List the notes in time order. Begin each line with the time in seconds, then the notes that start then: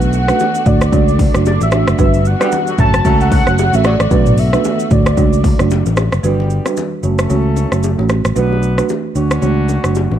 Already playing: B1 A3 B3 D4 F#4 F#5
0.01 shaker
0.13 F#5, shaker
0.28 A3 D4 F#4 B4, cross-stick, low bongo, shaker
0.39 high bongo, low conga, shaker
0.55 shaker
0.66 D2 A3 D4 F#4 C#5 D5, kick, mid tom, shaker
0.81 cross-stick, shaker
0.92 C#2 A3 D4 F#4 C#5, kick, low conga, shaker
1.08 shaker
1.19 kick, open hi-hat, low bongo, shaker
1.34 F#1 A3 D4 F#4 C#5, cross-stick, shaker
1.46 D5, high bongo, shaker
1.61 A1 E5, low bongo, shaker
1.72 A3 D4 F#4 C#5, cross-stick, high bongo, shaker
1.87 F#1 E5, cross-stick, shaker
1.99 G1 G3 B3 D4 F#4 B4, kick, low conga, shaker
2.14 shaker
2.25 F#5, shaker
2.40 D3 G3 B3 D4 F#4 G4 B4, cross-stick, low bongo, shaker
2.52 high bongo, low conga, shaker
2.67 D3 F#3 B3 F#4, shaker
2.78 F#1 C#3 F#3 A3 C#4 F#4 A4 C#5 A5, kick, mid tom, shaker
2.94 cross-stick, shaker
3.05 C#2 F#3 A3 C#4 F#4 A4 C#5, kick, low conga, shaker
3.21 F#5, shaker
3.32 F#5, kick, open hi-hat, low bongo, shaker
3.47 F#1 A3 C#4 F#4 C#5, cross-stick, shaker
3.58 high bongo, shaker
3.73 A1 A3 C#4 F#4 C#5 E5, low bongo, shaker
3.84 C#3 F#3 A3 F#4 D5, cross-stick, high bongo, shaker
4.00 A1, cross-stick, shaker
4.11 B1 D3 A3 B3 D4 F#4 B4, kick, low conga, shaker
4.26 mid tom, shaker
4.38 E5, open hi-hat, shaker
4.53 A3 D4 F#4 B4, cross-stick, low bongo, shaker
4.64 high bongo, low conga, shaker
4.80 shaker
4.91 D2 A3 D4 F#4 C#5 D5, kick, mid tom, shaker
5.06 cross-stick, shaker
5.17 C#2 A3 D4 F#4 C#5, kick, low conga, shaker
5.33 shaker
5.44 kick, open hi-hat, low bongo, shaker
5.59 F#1 A3 D4 F#4 C#5, cross-stick, shaker
5.71 high bongo, shaker
5.86 A1, low bongo, shaker
5.97 cross-stick, high bongo, shaker
6.12 F#1, cross-stick, shaker
6.23 G1 D3 G3 B3 D4 F#4 G4 B4, low conga, shaker
6.40 high bongo
6.50 shaker
6.66 G3 D4 F#4 B4, cross-stick, low bongo, shaker
6.77 high bongo, low conga, shaker
7.03 F#1 F#3 A3 C#4 F#4 A4 C#5, shaker
7.19 cross-stick, shaker
7.30 C#2 A3 C#4 F#4 C#5, low conga, shaker
7.57 low bongo, shaker
7.72 F#1 A3 C#4 F#4 C#5, cross-stick, shaker
7.83 high bongo, shaker
7.98 A1 A3 C#4 F#4 C#5, low bongo
8.09 cross-stick, high bongo, shaker
8.25 A1, cross-stick, shaker
8.36 B1 F#3 A3 B3 D4 F#4 B4, low conga, shaker
8.53 high bongo
8.63 shaker
8.78 A3 D4 F#4 B4, cross-stick, low bongo, shaker
8.89 high bongo, low conga, shaker
9.15 D2 F#3 A3 C#4 D4 F#4 C#5, shaker
9.31 cross-stick, shaker
9.42 C#2 A3 D4 F#4 C#5, low conga, shaker
9.69 low bongo, shaker
9.84 F#1 A3 D4 F#4 C#5, cross-stick, shaker
9.95 high bongo, shaker
10.11 A1, low bongo